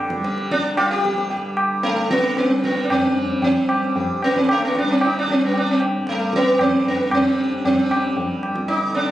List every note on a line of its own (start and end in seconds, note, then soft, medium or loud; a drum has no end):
0.00 1.33 G2 medium
0.00 1.92 D3 medium
0.00 0.16 G3 medium
0.10 tabla ke medium
0.16 0.75 G3 medium
0.24 0.49 G4 soft
0.24 tabla te medium
0.38 tabla te medium
0.51 0.76 D4 medium
0.51 tabla ke medium
0.65 tabla te medium
0.75 2.49 G3 medium
0.75 0.90 F4 medium
0.75 tabla na medium
0.91 1.29 G4 medium
1.05 tabla ke medium
1.18 tabla te medium
1.30 3.66 G2 medium
1.30 1.55 G4 soft
1.30 tabla tin medium
1.57 tabla na medium
1.83 2.10 A3 medium
1.83 tabla te medium
1.93 4.24 D3 medium
1.97 tabla te medium
2.11 2.38 B3 medium
2.11 tabla ke medium
2.24 tabla te medium
2.37 2.64 C4 medium
2.37 tabla te medium
2.49 3.08 G3 medium
2.49 tabla te medium
2.64 2.85 B3 medium
2.64 tabla ke medium
2.77 tabla te medium
2.84 2.90 D4 medium
2.90 3.43 C4 medium
2.90 tabla na medium
2.90 tabla ge medium
3.08 4.82 G3 medium
3.17 tabla ge medium
3.42 4.24 C4 medium
3.42 tabla tin medium
3.42 tabla ge medium
3.66 5.97 G2 medium
3.66 tabla na medium
3.96 4.21 G4 soft
3.96 tabla tin medium
3.96 tabla ge medium
4.22 6.53 D3 medium
4.22 4.36 B3 medium
4.22 tabla na medium
4.36 4.50 C4 medium
4.36 tabla ke medium
4.49 4.64 A3 medium
4.49 tabla na medium
4.65 4.76 B3 medium
4.75 4.91 D4 medium
4.75 tabla ke medium
4.82 5.39 G3 medium
4.91 5.03 C4 medium
5.01 5.17 D#4 medium
5.01 tabla na medium
5.19 5.31 D4 medium
5.28 5.43 C4 medium
5.28 tabla ke medium
5.39 7.11 G3 medium
5.39 tabla te medium
5.45 5.57 B3 medium
5.54 5.70 D4 medium
5.54 tabla tin medium
5.71 5.82 C4 medium
5.80 tabla na medium
5.98 8.26 G2 medium
6.07 6.35 A3 medium
6.07 tabla te medium
6.19 tabla te medium
6.33 6.60 B3 loud
6.33 tabla ke medium
6.46 tabla te medium
6.54 8.84 D3 medium
6.59 6.87 C4 loud
6.59 tabla na medium
6.59 tabla ge medium
6.85 7.14 B3 medium
6.85 tabla ge medium
7.11 7.69 G3 medium
7.11 7.64 C4 medium
7.11 tabla na medium
7.11 tabla ge medium
7.39 7.64 G4 soft
7.39 tabla te medium
7.65 9.11 G3 medium
7.65 8.39 C4 medium
7.65 tabla tin medium
7.65 tabla ge medium
7.91 8.15 G4 soft
7.91 tabla na medium
8.17 tabla tin medium
8.17 tabla ge medium
8.26 9.11 G2 medium
8.43 tabla na medium
8.55 tabla ke medium
8.68 8.94 D#4 medium
8.68 tabla te medium
8.84 9.11 D3 medium
8.95 9.11 D4 medium
8.95 tabla te medium